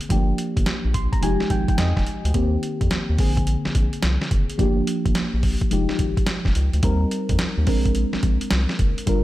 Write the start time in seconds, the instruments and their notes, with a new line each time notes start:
Already playing: fm electric piano D3 A#3 C4 G#4
0.01 closed hi-hat
0.09 analog synth bass G1, fm electric piano F3 A3 D4 G4, kick, closed hi-hat
0.16 fm electric piano A#3
0.38 closed hi-hat
0.57 analog synth bass G1, kick, closed hi-hat
0.66 analog synth bass A#1, snare, closed hi-hat
0.85 analog synth bass A#1
0.94 fm electric piano C6, kick, closed hi-hat
1.12 fm electric piano A#5, kick, closed hi-hat
1.21 analog synth bass F1, fm electric piano F3 G#3 D#4 G4 G#5, closed hi-hat
1.40 analog synth bass G#1, snare
1.50 analog synth bass G#1, fm electric piano G5, kick, closed hi-hat
1.68 fm electric piano G5, kick, closed hi-hat
1.78 analog synth bass F2, fm electric piano D#5, snare, closed hi-hat
1.97 analog synth bass F1, kick, snare
2.07 closed hi-hat
2.25 analog synth bass D2, closed hi-hat
2.34 analog synth bass D#2, fm electric piano D#3 A#3 C4 G4, kick, closed hi-hat
2.63 closed hi-hat
2.81 analog synth bass F2, kick, closed hi-hat
2.91 analog synth bass D#2, snare, closed hi-hat
3.10 analog synth bass D#2
3.18 analog synth bass A#1, fm electric piano D3 A#3 C4 G#4, kick, open hi-hat
3.37 kick, closed hi-hat
3.47 closed hi-hat
3.65 analog synth bass A#1, snare
3.75 analog synth bass A#1, kick, closed hi-hat
3.93 closed hi-hat
4.02 analog synth bass C2, snare, closed hi-hat
4.21 snare
4.31 analog synth bass F#1, kick, closed hi-hat
4.50 closed hi-hat
4.58 analog synth bass G1, fm electric piano F3 A#3 D4 G4, kick, closed hi-hat
4.87 closed hi-hat
5.06 analog synth bass G1, kick, closed hi-hat
5.15 analog synth bass A#1, snare, closed hi-hat
5.34 analog synth bass A#1
5.43 kick, open hi-hat
5.61 kick, closed hi-hat
5.71 analog synth bass F1, fm electric piano F3 G#3 D#4 G4, closed hi-hat
5.89 analog synth bass G#1, snare
5.99 analog synth bass G#1, kick, closed hi-hat
6.17 kick, closed hi-hat
6.26 snare, closed hi-hat
6.45 analog synth bass F1, kick, snare
6.55 analog synth bass C#2, closed hi-hat
6.73 analog synth bass D2, closed hi-hat
6.83 analog synth bass D#2, fm electric piano G3 C4 D#4 A#4, kick, closed hi-hat
7.11 closed hi-hat
7.29 analog synth bass F2, kick, closed hi-hat
7.39 analog synth bass D#2, snare, closed hi-hat
7.58 analog synth bass D#2
7.66 analog synth bass A#1, fm electric piano G#3 C4 D4 A#4, kick, open hi-hat
7.85 kick, closed hi-hat
7.95 closed hi-hat
8.13 analog synth bass A#1, snare
8.23 analog synth bass A#1, kick, closed hi-hat
8.41 closed hi-hat
8.51 analog synth bass C2, snare, closed hi-hat
8.69 snare
8.79 analog synth bass F#1, kick, closed hi-hat
8.98 closed hi-hat
9.06 analog synth bass G1, fm electric piano G3 D4 F4 A#4, kick, closed hi-hat